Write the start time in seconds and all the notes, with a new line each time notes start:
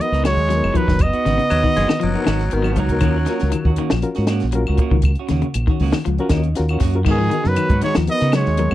0.00 B3 D#4 F#4 A#4 D#5, closed hi-hat
0.12 C#2 D#4 F#4, muted clean electric guitar stroke, snare, closed hi-hat
0.24 D#3 F#3 D#4 F#4 C#5, muted clean electric guitar stroke, snare, closed hi-hat, claves
0.29 G#3
0.37 D#2, closed hi-hat
0.49 F#3 B3 D#4 F#4 A#4, snare, closed hi-hat
0.63 F#1 B3 D#4, claves
0.74 D#3 F3 B3 D#4 F#4 B4, kick, closed hi-hat
0.79 F#3
0.88 F#1 D#3, kick, snare
0.99 D#5, kick, closed hi-hat, claves
1.05 B3
1.13 B3 D#4 F#4, closed hi-hat
1.25 G#1 C#3 D#3 B3 D#4 F#4, snare, closed hi-hat
1.38 C#3, closed hi-hat
1.50 D#2 F#3, closed hi-hat, claves
1.63 D#3 B3 D#4 F#4, kick
1.76 F#1 D#3 G#3 B3 D#4 F#4, closed hi-hat
1.88 D#3, muted fingered electric bass stroke, snare, claves
2.00 F#1 F3 F#3, closed hi-hat
2.14 B3 D#4 F#4 A#4, muted clean electric guitar stroke, closed hi-hat
2.25 G#1 D#3 B3 D#4 F#4, snare, closed hi-hat, claves
2.39 snare, closed hi-hat
2.51 G#1 D#3 B3 D#4 F#4 A#4, closed hi-hat
2.62 F#3 B3 D#4 F#4, closed hi-hat, claves
2.72 F3, closed hi-hat
2.76 C#2 D#3 F#3 B3 D#4 F#4, kick
2.89 B3 D#4 F#4 A#4, kick, closed hi-hat
3.01 D#2 D#3 A#3 C#4 F4 F#4 A#4, kick, closed hi-hat, claves
3.16 C#4 F#4
3.26 A#3 C#4 F4 F#4 A#4, muted clean electric guitar stroke, snare, closed hi-hat
3.40 C#2, snare, closed hi-hat
3.52 D#3, closed hi-hat, claves
3.65 D#2 C#4 F#4, kick
3.76 D#3 A#3 C#4 F#4, closed hi-hat
3.90 A#1 F3, snare, claves
4.02 C#4 F4 F#4 A#4, closed hi-hat
4.15 G#2 C#4 F#4, snare, closed hi-hat
4.27 A#3 C#4 F#4, snare, closed hi-hat, claves
4.40 A#1, snare, closed hi-hat
4.52 F#3 C#4 F4 F#4 A#4, closed hi-hat
4.67 C#2 C#4 F#4, claves
4.77 A#3 C#4, muted fingered electric bass stroke, muted clean electric guitar stroke, kick, closed hi-hat
4.82 F#4
4.91 C#2 D#3, kick
5.02 kick, closed hi-hat, claves
5.15 closed hi-hat
5.19 C#4 F#4
5.28 D#2 C#3 A#3 C#4 F#4, snare, closed hi-hat
5.42 C#3, closed hi-hat
5.54 A#1, closed hi-hat, claves
5.67 D#3 C#4 F#4, kick
5.80 C#2 A#3 C#4 F#4, open hi-hat
5.92 D#3, muted fingered electric bass stroke, snare, claves
6.05 C#2 F3, closed hi-hat
6.18 C#4 F4 F#4 A#4, closed hi-hat
6.29 D#2 D#3 A#3 C#4 D#5, muted clean electric guitar stroke, kick, snare, closed hi-hat, claves
6.43 closed hi-hat
6.55 D#2 C#4 F4 F#4 A#4 F5, snare, closed hi-hat
6.69 C#4 F#4, closed hi-hat, claves
6.80 F#2 F#3 A#3 C#4 F#4 F#5, kick, snare, open hi-hat
6.94 C#4 F4 F#4 A#4, closed hi-hat
7.05 G#2 D#3 B3 D#4 F#4 A#4, kick, crash, claves
7.11 D#3 G#4
7.18 F3 D#4 F#4
7.30 D#3 B3 D#4 F#4 A#4, muted clean electric guitar stroke, closed hi-hat
7.44 F#2 C#3, snare
7.49 F#3 B4
7.56 D#3, closed hi-hat, claves
7.69 G#2 B3 D#4 F#4, kick, closed hi-hat
7.81 D#3 B3 D#4 F#4 C#5, closed hi-hat
7.86 G#3
7.95 D#2 F3, snare, closed hi-hat, claves
8.07 B3 D#4 F#4 A#4 D#5, closed hi-hat
8.12 B3
8.20 C#3 B3 D#4 F#4, snare, closed hi-hat
8.32 D#3 F#3 B3 D#4 F#4 C#5, snare, closed hi-hat, claves
8.37 G#3
8.46 D#2, snare
8.57 F#3 B3 D#4 F#4 A#4, closed hi-hat
8.71 F#4, claves